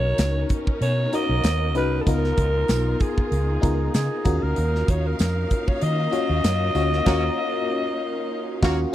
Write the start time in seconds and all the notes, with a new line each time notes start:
Already playing: B1 B3 C#4 D#4 F#4 A#4 C#5
0.18 C#2, snare, closed hi-hat, tambourine
0.49 kick, closed hi-hat
0.67 kick
0.81 B2 C#5, closed hi-hat
1.12 C#4 D#4 F#4 A#4 D#5, closed hi-hat
1.29 B1
1.44 D#2, snare, closed hi-hat, tambourine
1.75 C2 C#4 D#4 F#4 B4, closed hi-hat
2.01 A4
2.06 C#2 B3 D#4 F4 A#4, kick, closed hi-hat
2.24 snare
2.37 C#2, kick, closed hi-hat
2.68 B1, snare, closed hi-hat, tambourine
3.00 G#4, kick, closed hi-hat
3.18 kick
3.32 C#2, closed hi-hat
3.61 C#2 B3 D#4 F4 A#4, kick, closed hi-hat
3.94 C#3 G#4, snare, closed hi-hat, tambourine
4.25 D#2 A#3 C#4 F4 F#4 A#4 F5, kick, closed hi-hat
4.43 D2 A#4
4.56 D#2, closed hi-hat
4.75 snare
4.88 D#2 C#5, kick, closed hi-hat
5.06 A#4
5.19 F2 A#4, snare, closed hi-hat, tambourine
5.51 kick, closed hi-hat
5.68 C#5, kick
5.81 D#3 D#5, closed hi-hat
6.11 C#4 F4 F#4 C#5, closed hi-hat
6.30 D#2
6.44 F#2, snare, closed hi-hat, tambourine
6.75 D2 C#4 F4 F#4 C#5, closed hi-hat
6.93 snare
7.06 D#2 A#3 C#4 F4 F#4 A#4 C#5, kick, snare, crash
8.62 D#2 A#3 C#4 F4 F#4 C#5, kick, snare